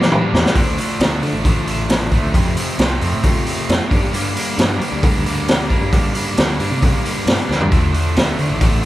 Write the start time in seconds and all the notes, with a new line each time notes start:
Already playing: A#3 D4
0.00 E3, snare
0.10 D3 G3 A#3 D4, mid tom
0.33 E2, snare
0.46 snare
0.54 D2 D3 F3 A3 D4, kick, open hi-hat
0.77 F3 A3 D4, open hi-hat
0.99 D2 D3 F3 A3 D4, snare, open hi-hat
1.22 D3 F3 A3 D4, open hi-hat
1.33 A1
1.44 D3 F3 A3 D4, kick, open hi-hat
1.67 F3 A3 D4, open hi-hat
1.89 snare, open hi-hat
2.11 F3 A3 D4, kick, open hi-hat
2.23 D2
2.33 F2 C3 F3 A3 C4, kick, open hi-hat
2.56 F3 A3 C4, open hi-hat
2.78 C2 C3 F3 A3 C4, snare, open hi-hat
3.00 F2 F3 A3 C4, open hi-hat
3.13 A2
3.22 F2 C3 F3 A3 C4, kick, open hi-hat
3.45 F3 A3 C4, open hi-hat
3.69 F2, snare, open hi-hat
3.90 G2 D3 G3 A#3 D4, kick, open hi-hat
4.03 G2
4.12 G2 D3 G3 A#3 D4, open hi-hat
4.34 G3 A#3 D4, open hi-hat
4.56 G2 D3 G3 A#3 D4, snare, open hi-hat
4.79 G3 A#3 D4, open hi-hat
4.92 D2
5.02 G2 D3 G3 A#3 D4, kick, open hi-hat
5.24 G3 A#3 D4, open hi-hat
5.48 snare, open hi-hat
5.69 G3 A#3 D4, kick, open hi-hat
5.81 G2
5.92 G2 D3 G3 A#3 D4, kick, open hi-hat
6.14 G3 A#3 D4, open hi-hat
6.37 D2 D3 G3 A#3 D4, snare, open hi-hat
6.59 G2 G3 A#3 D4, open hi-hat
6.71 C3
6.82 G2 D3 G3 A#3 D4, kick, open hi-hat
7.05 G3 A#3 D4, open hi-hat
7.26 G2, snare, open hi-hat
7.49 D2 G3 A#3 D4, snare
7.61 G2, floor tom
7.70 D2 D3 F3 A3 D4, kick, open hi-hat
7.93 F3 A3 D4, open hi-hat
8.15 D2 D3 F3 A3 D4, snare, open hi-hat
8.37 D3 F3 A3 D4, open hi-hat
8.51 A1
8.60 D3 F3 A3 D4, kick, open hi-hat